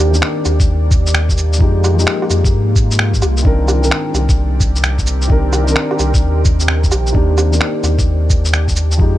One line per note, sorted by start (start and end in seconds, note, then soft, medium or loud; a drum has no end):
0.00 0.21 D#2 loud
0.00 0.11 D#3 loud
0.00 0.12 A#3 medium
0.00 3.41 A#3 medium
0.00 0.11 D4 medium
0.00 0.11 G4 loud
0.00 1.57 G4 medium
0.00 1.58 D5 medium
0.11 0.23 D#3 medium
0.11 0.23 A#3 medium
0.11 0.24 D4 medium
0.11 shaker medium
0.15 0.25 G4 medium
0.22 finger snap loud
0.45 1.62 D#2 medium
0.45 cabasa medium
0.45 low woodblock soft
0.45 shaker soft
0.60 kick loud
0.60 shaker medium
0.91 kick loud
0.91 cabasa medium
1.07 shaker medium
1.15 finger snap loud
1.15 cabasa soft
1.29 kick medium
1.29 shaker soft
1.38 cabasa medium
1.53 shaker medium
1.58 2.06 F2 medium
1.58 1.92 F3 medium
1.58 1.95 G#3 medium
1.58 3.44 G#3 medium
1.58 1.95 D#4 medium
1.58 3.44 F4 medium
1.58 1.96 G4 loud
1.58 kick loud
1.84 cabasa medium
1.84 low woodblock medium
1.94 3.41 F3 medium
1.94 3.42 G#3 medium
1.99 3.44 D#4 medium
1.99 3.45 G4 loud
1.99 shaker medium
2.07 finger snap loud
2.22 low woodblock medium
2.30 2.55 F2 medium
2.30 cabasa medium
2.30 low woodblock soft
2.30 shaker soft
2.44 kick loud
2.44 shaker medium
2.53 3.23 G#2 medium
2.76 kick loud
2.76 cabasa medium
2.91 cabasa soft
2.91 shaker medium
2.99 finger snap loud
3.14 kick medium
3.14 shaker soft
3.22 3.44 C2 loud
3.22 cabasa medium
3.22 low woodblock medium
3.37 shaker medium
3.43 3.90 C2 loud
3.43 3.78 D#3 medium
3.43 3.79 C4 medium
3.43 7.11 C4 medium
3.43 3.80 D4 medium
3.43 7.11 A#4 medium
3.43 5.28 D5 medium
3.43 kick loud
3.47 7.12 G4 medium
3.47 3.81 A#4 loud
3.68 cabasa medium
3.68 low woodblock medium
3.81 3.92 D#3 medium
3.81 3.93 C4 medium
3.81 3.94 D4 medium
3.81 shaker medium
3.85 3.94 A#4 medium
3.91 finger snap loud
4.14 5.75 C2 medium
4.14 cabasa medium
4.14 low woodblock soft
4.14 shaker soft
4.29 kick loud
4.29 shaker medium
4.60 kick loud
4.60 cabasa medium
4.76 shaker medium
4.84 finger snap loud
4.84 cabasa soft
4.98 kick medium
4.98 shaker soft
5.07 cabasa medium
5.22 shaker medium
5.28 5.62 D#3 medium
5.28 5.64 C4 medium
5.28 5.65 D4 medium
5.28 7.12 C5 medium
5.28 kick loud
5.32 5.65 A#4 loud
5.53 cabasa medium
5.53 low woodblock medium
5.64 7.11 D#3 medium
5.64 7.12 C4 medium
5.64 shaker medium
5.69 7.13 D4 medium
5.69 7.15 A#4 loud
5.76 finger snap loud
5.91 low woodblock medium
5.99 6.24 C2 medium
5.99 cabasa medium
5.99 low woodblock soft
5.99 shaker soft
6.14 kick loud
6.14 shaker medium
6.22 6.93 D#2 medium
6.45 kick loud
6.45 cabasa medium
6.60 cabasa soft
6.60 shaker medium
6.68 finger snap loud
6.83 kick medium
6.83 shaker soft
6.91 7.14 A#1 loud
6.91 cabasa medium
6.91 low woodblock medium
7.07 shaker medium
7.12 7.60 D#2 loud
7.12 7.48 D#3 loud
7.12 7.49 A#3 medium
7.12 7.49 D4 medium
7.12 8.98 D4 medium
7.12 8.98 G4 medium
7.12 7.50 G4 loud
7.12 8.98 D5 medium
7.12 kick loud
7.38 cabasa medium
7.38 low woodblock medium
7.51 7.62 D#3 medium
7.51 7.62 A#3 medium
7.51 7.63 D4 medium
7.51 shaker medium
7.55 7.64 G4 medium
7.61 finger snap loud
7.83 9.01 D#2 medium
7.83 cabasa medium
7.83 low woodblock soft
7.83 shaker soft
7.99 kick loud
7.99 shaker medium
8.30 kick loud
8.30 cabasa medium
8.45 shaker medium
8.54 finger snap loud
8.54 cabasa soft
8.68 kick medium
8.68 shaker soft
8.76 cabasa medium
8.91 shaker medium
8.97 9.18 F2 medium
8.97 9.18 F3 medium
8.97 9.18 G#3 medium
8.97 9.18 D#4 medium
8.97 kick loud
9.02 9.18 G4 loud